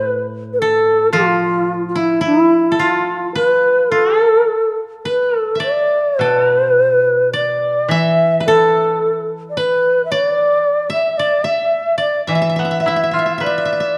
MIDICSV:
0, 0, Header, 1, 4, 480
1, 0, Start_track
1, 0, Tempo, 1084991
1, 501, Time_signature, 2, 2, 24, 8
1, 982, Tempo, 1136364
1, 3382, Tempo, 1107011
1, 4342, Tempo, 1081081
1, 5302, Tempo, 1134216
1, 6022, End_track
2, 0, Start_track
2, 0, Title_t, "Koto"
2, 0, Program_c, 0, 107
2, 0, Note_on_c, 0, 69, 57
2, 0, Note_on_c, 0, 71, 60
2, 271, Note_off_c, 0, 69, 0
2, 273, Note_on_c, 0, 69, 55
2, 500, Note_on_c, 0, 65, 62
2, 578, Note_off_c, 0, 71, 0
2, 865, Note_on_c, 0, 64, 51
2, 891, Note_off_c, 0, 65, 0
2, 975, Note_off_c, 0, 64, 0
2, 977, Note_on_c, 0, 64, 56
2, 1109, Note_off_c, 0, 69, 0
2, 1192, Note_on_c, 0, 69, 39
2, 1225, Note_on_c, 0, 65, 55
2, 1250, Note_off_c, 0, 64, 0
2, 1461, Note_on_c, 0, 71, 58
2, 1696, Note_off_c, 0, 69, 0
2, 1698, Note_off_c, 0, 65, 0
2, 1698, Note_on_c, 0, 65, 54
2, 1812, Note_off_c, 0, 65, 0
2, 1812, Note_on_c, 0, 69, 54
2, 2177, Note_off_c, 0, 71, 0
2, 2179, Note_on_c, 0, 71, 45
2, 2305, Note_off_c, 0, 69, 0
2, 2305, Note_off_c, 0, 71, 0
2, 2305, Note_on_c, 0, 69, 45
2, 2390, Note_on_c, 0, 76, 35
2, 2409, Note_on_c, 0, 74, 52
2, 2665, Note_off_c, 0, 69, 0
2, 2667, Note_on_c, 0, 69, 53
2, 2751, Note_off_c, 0, 69, 0
2, 2751, Note_on_c, 0, 70, 53
2, 2806, Note_off_c, 0, 70, 0
2, 2806, Note_on_c, 0, 71, 53
2, 3021, Note_off_c, 0, 76, 0
2, 3085, Note_off_c, 0, 74, 0
2, 3143, Note_on_c, 0, 74, 56
2, 3386, Note_on_c, 0, 76, 63
2, 3418, Note_off_c, 0, 71, 0
2, 3600, Note_on_c, 0, 71, 42
2, 3632, Note_on_c, 0, 69, 57
2, 3830, Note_off_c, 0, 74, 0
2, 4034, Note_off_c, 0, 76, 0
2, 4104, Note_off_c, 0, 71, 0
2, 4105, Note_on_c, 0, 71, 58
2, 4342, Note_on_c, 0, 74, 62
2, 4460, Note_off_c, 0, 69, 0
2, 4689, Note_on_c, 0, 76, 53
2, 4819, Note_off_c, 0, 74, 0
2, 4821, Note_on_c, 0, 74, 56
2, 4888, Note_off_c, 0, 71, 0
2, 4929, Note_off_c, 0, 76, 0
2, 4931, Note_on_c, 0, 76, 50
2, 5167, Note_off_c, 0, 74, 0
2, 5169, Note_on_c, 0, 74, 49
2, 5298, Note_off_c, 0, 76, 0
2, 5300, Note_on_c, 0, 76, 48
2, 5332, Note_off_c, 0, 76, 0
2, 5333, Note_on_c, 0, 76, 36
2, 5359, Note_off_c, 0, 76, 0
2, 5360, Note_on_c, 0, 76, 39
2, 5392, Note_off_c, 0, 76, 0
2, 5394, Note_on_c, 0, 76, 32
2, 5420, Note_off_c, 0, 76, 0
2, 5421, Note_on_c, 0, 76, 36
2, 5457, Note_off_c, 0, 76, 0
2, 5459, Note_on_c, 0, 76, 29
2, 5483, Note_off_c, 0, 76, 0
2, 5485, Note_on_c, 0, 76, 33
2, 5521, Note_off_c, 0, 76, 0
2, 5523, Note_on_c, 0, 76, 29
2, 5554, Note_off_c, 0, 76, 0
2, 5555, Note_on_c, 0, 76, 34
2, 5590, Note_off_c, 0, 76, 0
2, 5591, Note_on_c, 0, 76, 28
2, 5621, Note_off_c, 0, 76, 0
2, 5622, Note_on_c, 0, 76, 31
2, 5654, Note_off_c, 0, 76, 0
2, 5655, Note_on_c, 0, 76, 26
2, 5685, Note_off_c, 0, 76, 0
2, 5687, Note_on_c, 0, 76, 30
2, 5715, Note_off_c, 0, 76, 0
2, 5717, Note_on_c, 0, 76, 27
2, 5767, Note_off_c, 0, 76, 0
2, 5768, Note_on_c, 0, 76, 33
2, 5776, Note_off_c, 0, 76, 0
2, 5778, Note_on_c, 0, 76, 28
2, 5802, Note_off_c, 0, 76, 0
2, 5804, Note_on_c, 0, 76, 32
2, 5851, Note_off_c, 0, 76, 0
2, 5852, Note_off_c, 0, 74, 0
2, 5852, Note_on_c, 0, 76, 30
2, 5883, Note_off_c, 0, 76, 0
2, 5884, Note_on_c, 0, 76, 36
2, 5913, Note_off_c, 0, 76, 0
2, 5915, Note_on_c, 0, 76, 26
2, 5945, Note_off_c, 0, 76, 0
2, 5947, Note_on_c, 0, 76, 33
2, 6022, Note_off_c, 0, 76, 0
2, 6022, End_track
3, 0, Start_track
3, 0, Title_t, "Shakuhachi"
3, 0, Program_c, 1, 77
3, 0, Note_on_c, 1, 71, 80
3, 101, Note_off_c, 1, 71, 0
3, 235, Note_on_c, 1, 71, 49
3, 261, Note_on_c, 1, 69, 64
3, 268, Note_off_c, 1, 71, 0
3, 497, Note_off_c, 1, 69, 0
3, 499, Note_on_c, 1, 65, 75
3, 811, Note_off_c, 1, 65, 0
3, 834, Note_on_c, 1, 65, 47
3, 874, Note_on_c, 1, 64, 60
3, 880, Note_off_c, 1, 65, 0
3, 989, Note_off_c, 1, 64, 0
3, 996, Note_on_c, 1, 64, 68
3, 1209, Note_off_c, 1, 64, 0
3, 1229, Note_on_c, 1, 65, 60
3, 1444, Note_off_c, 1, 65, 0
3, 1462, Note_on_c, 1, 71, 72
3, 1693, Note_on_c, 1, 69, 71
3, 1700, Note_off_c, 1, 71, 0
3, 2059, Note_off_c, 1, 69, 0
3, 2168, Note_on_c, 1, 71, 51
3, 2316, Note_off_c, 1, 71, 0
3, 2316, Note_on_c, 1, 69, 51
3, 2400, Note_off_c, 1, 69, 0
3, 2421, Note_on_c, 1, 74, 63
3, 2661, Note_on_c, 1, 71, 71
3, 2668, Note_off_c, 1, 74, 0
3, 3143, Note_off_c, 1, 71, 0
3, 3146, Note_on_c, 1, 74, 58
3, 3384, Note_on_c, 1, 76, 74
3, 3391, Note_off_c, 1, 74, 0
3, 3624, Note_off_c, 1, 76, 0
3, 3627, Note_on_c, 1, 69, 72
3, 3977, Note_off_c, 1, 69, 0
3, 4074, Note_on_c, 1, 74, 47
3, 4109, Note_on_c, 1, 71, 65
3, 4115, Note_off_c, 1, 74, 0
3, 4311, Note_off_c, 1, 71, 0
3, 4314, Note_on_c, 1, 76, 54
3, 4340, Note_on_c, 1, 73, 81
3, 4347, Note_off_c, 1, 76, 0
3, 4393, Note_off_c, 1, 73, 0
3, 4393, Note_on_c, 1, 74, 81
3, 4698, Note_off_c, 1, 74, 0
3, 4701, Note_on_c, 1, 76, 61
3, 4811, Note_on_c, 1, 74, 65
3, 4818, Note_off_c, 1, 76, 0
3, 4934, Note_on_c, 1, 76, 67
3, 4941, Note_off_c, 1, 74, 0
3, 5177, Note_off_c, 1, 76, 0
3, 5180, Note_on_c, 1, 74, 55
3, 5294, Note_off_c, 1, 74, 0
3, 5298, Note_on_c, 1, 76, 63
3, 5762, Note_off_c, 1, 76, 0
3, 5789, Note_on_c, 1, 74, 55
3, 6022, Note_off_c, 1, 74, 0
3, 6022, End_track
4, 0, Start_track
4, 0, Title_t, "Koto"
4, 0, Program_c, 2, 107
4, 0, Note_on_c, 2, 45, 42
4, 498, Note_on_c, 2, 53, 43
4, 981, Note_off_c, 2, 45, 0
4, 1932, Note_off_c, 2, 53, 0
4, 2659, Note_on_c, 2, 47, 39
4, 3375, Note_on_c, 2, 52, 43
4, 3381, Note_off_c, 2, 47, 0
4, 4816, Note_off_c, 2, 52, 0
4, 5305, Note_on_c, 2, 52, 40
4, 5434, Note_on_c, 2, 59, 30
4, 5548, Note_on_c, 2, 64, 30
4, 5664, Note_on_c, 2, 65, 27
4, 5781, Note_on_c, 2, 71, 30
4, 6022, Note_off_c, 2, 52, 0
4, 6022, Note_off_c, 2, 59, 0
4, 6022, Note_off_c, 2, 64, 0
4, 6022, Note_off_c, 2, 65, 0
4, 6022, Note_off_c, 2, 71, 0
4, 6022, End_track
0, 0, End_of_file